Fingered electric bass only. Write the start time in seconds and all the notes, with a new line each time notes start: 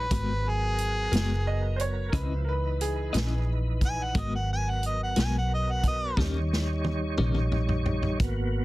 0.11 G#1
1.12 F#1
2.13 C#2
3.15 A#1
4.15 G#1
5.17 B1
6.17 D#2
7.19 A#1
8.20 G#1